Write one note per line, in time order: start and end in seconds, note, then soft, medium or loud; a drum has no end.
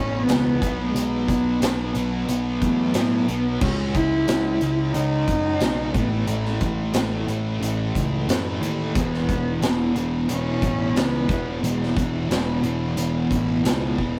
0.00 0.24 A1 medium
0.00 0.27 E2 medium
0.00 0.28 B2 loud
0.00 0.28 E3 loud
0.00 0.25 C#4 loud
0.23 0.91 B3 loud
0.28 0.58 C#2 medium
0.28 0.59 E2 medium
0.28 0.60 B2 medium
0.28 0.60 E3 medium
0.28 snare loud
0.28 closed hi-hat medium
0.62 0.91 B1 medium
0.62 0.94 B2 medium
0.62 0.95 F#3 medium
0.62 0.96 B3 medium
0.62 kick medium
0.62 closed hi-hat medium
0.89 1.24 G#3 medium
0.95 1.24 B1 medium
0.95 1.61 B2 loud
0.95 1.62 F#3 loud
0.95 1.62 B3 loud
0.95 closed hi-hat loud
1.22 2.25 F#3 medium
1.28 1.58 B1 medium
1.28 kick medium
1.28 closed hi-hat medium
1.61 1.91 B1 medium
1.61 1.94 B2 medium
1.61 1.95 F#3 medium
1.61 1.95 B3 medium
1.61 snare loud
1.61 closed hi-hat loud
1.95 2.24 B1 medium
1.95 2.28 B2 medium
1.95 2.28 F#3 medium
1.95 2.29 B3 medium
1.95 closed hi-hat medium
2.28 2.58 B1 medium
2.28 2.95 B2 medium
2.28 2.95 F#3 loud
2.28 2.96 B3 loud
2.28 closed hi-hat loud
2.60 2.91 E2 medium
2.60 3.23 A3 medium
2.60 kick medium
2.60 closed hi-hat medium
2.94 3.24 A2 medium
2.94 3.27 B2 medium
2.94 3.28 F#3 medium
2.94 3.28 B3 medium
2.94 snare loud
2.94 closed hi-hat loud
3.27 3.57 B1 medium
3.27 3.59 B2 medium
3.27 3.60 F#3 medium
3.27 3.58 B3 loud
3.27 3.60 B3 medium
3.27 closed hi-hat medium
3.60 3.91 C#2 medium
3.60 4.27 C#3 medium
3.60 4.27 G#3 loud
3.60 3.75 C#4 medium
3.60 kick loud
3.60 crash medium
3.64 4.28 C#4 loud
3.94 4.24 C#2 medium
3.94 4.94 E4 loud
3.94 kick medium
3.94 closed hi-hat medium
4.28 4.58 C#2 medium
4.28 4.60 C#3 medium
4.28 4.61 G#3 loud
4.28 4.61 C#4 loud
4.28 snare loud
4.28 closed hi-hat loud
4.61 4.91 C#2 medium
4.61 4.94 C#3 medium
4.61 4.94 G#3 medium
4.61 4.95 C#4 medium
4.61 closed hi-hat medium
4.92 5.24 C#2 medium
4.92 5.60 C#3 loud
4.92 5.60 G#3 loud
4.92 5.61 C#4 loud
4.92 5.94 D#4 loud
4.92 closed hi-hat medium
5.28 5.57 F#2 medium
5.28 kick medium
5.28 closed hi-hat medium
5.60 5.90 B1 medium
5.60 5.92 C#3 medium
5.60 5.92 G#3 medium
5.60 5.93 C#4 medium
5.60 snare loud
5.60 closed hi-hat medium
5.92 6.24 A1 medium
5.92 6.26 A2 medium
5.92 6.28 E3 medium
5.92 6.27 A3 loud
5.92 6.26 B3 medium
5.92 kick loud
5.92 closed hi-hat medium
6.27 6.57 A1 medium
6.27 6.93 A2 medium
6.27 6.94 E3 loud
6.27 6.58 A3 medium
6.27 6.95 A3 loud
6.27 closed hi-hat medium
6.46 snare soft
6.61 6.91 A1 medium
6.61 7.58 A3 medium
6.61 kick medium
6.61 closed hi-hat medium
6.94 7.24 A1 medium
6.94 7.28 A2 medium
6.94 7.29 E3 medium
6.94 7.29 A3 loud
6.94 snare loud
6.94 closed hi-hat loud
7.28 7.57 A1 medium
7.28 7.60 A2 medium
7.28 7.62 E3 medium
7.28 7.61 A3 medium
7.28 closed hi-hat medium
7.60 7.90 A1 medium
7.60 8.27 A2 medium
7.60 8.29 E3 loud
7.60 8.29 A3 loud
7.60 closed hi-hat loud
7.95 8.25 C#2 medium
7.95 kick medium
7.95 closed hi-hat medium
8.28 8.58 F#2 medium
8.28 8.59 A2 medium
8.28 8.60 E3 loud
8.28 8.61 A3 medium
8.28 snare loud
8.28 closed hi-hat loud
8.60 8.97 D#2 medium
8.60 8.92 A2 medium
8.60 8.95 E3 medium
8.60 8.93 A3 loud
8.60 closed hi-hat medium
8.95 9.25 E1 medium
8.95 9.61 E2 medium
8.95 9.62 B2 medium
8.95 9.63 E3 loud
8.95 9.91 B3 loud
8.95 kick loud
8.95 closed hi-hat loud
9.14 snare soft
9.29 9.58 E1 medium
9.29 kick medium
9.29 closed hi-hat medium
9.61 9.91 E1 medium
9.61 9.94 E2 medium
9.61 9.94 B2 medium
9.61 9.95 E3 loud
9.61 snare loud
9.61 closed hi-hat medium
9.94 10.25 E1 medium
9.94 10.27 E2 medium
9.94 10.28 B2 medium
9.94 10.29 E3 medium
9.94 closed hi-hat medium
10.28 10.58 E1 medium
10.28 10.94 E2 loud
10.28 10.95 B2 loud
10.28 10.96 E3 loud
10.28 10.98 C#4 loud
10.28 closed hi-hat medium
10.62 10.92 A1 loud
10.62 kick medium
10.62 closed hi-hat medium
10.95 11.25 C#2 loud
10.95 11.27 E2 medium
10.95 11.27 B2 medium
10.95 11.29 E3 medium
10.95 11.63 B3 loud
10.95 snare loud
10.95 closed hi-hat medium
11.28 11.59 E1 medium
11.28 11.61 E2 loud
11.28 11.62 B2 medium
11.28 11.63 E3 loud
11.28 kick loud
11.28 closed hi-hat medium
11.63 11.93 E1 medium
11.63 12.29 E2 loud
11.63 12.30 B2 medium
11.63 12.30 E3 loud
11.63 11.98 G#3 medium
11.63 closed hi-hat medium
11.83 snare soft
11.97 12.26 E1 medium
11.97 12.96 E3 medium
11.97 kick medium
11.97 closed hi-hat medium
12.29 12.59 E1 medium
12.29 12.62 E2 medium
12.29 12.63 B2 medium
12.29 12.63 E3 medium
12.29 snare loud
12.29 closed hi-hat medium
12.62 12.92 E1 medium
12.62 12.95 E2 medium
12.62 12.96 B2 medium
12.62 12.97 E3 medium
12.62 closed hi-hat medium
12.96 13.26 E1 medium
12.96 13.63 E2 medium
12.96 13.63 B2 medium
12.96 13.64 E3 loud
12.96 closed hi-hat loud
13.31 13.60 A1 medium
13.31 kick medium
13.31 closed hi-hat medium
13.64 13.94 C#2 medium
13.64 13.97 E2 medium
13.64 13.98 B2 medium
13.64 13.98 E3 medium
13.64 snare loud
13.64 closed hi-hat loud
13.98 14.19 E1 medium
13.98 14.19 E2 medium
13.98 14.19 B2 medium
13.98 14.19 E3 medium
13.98 kick medium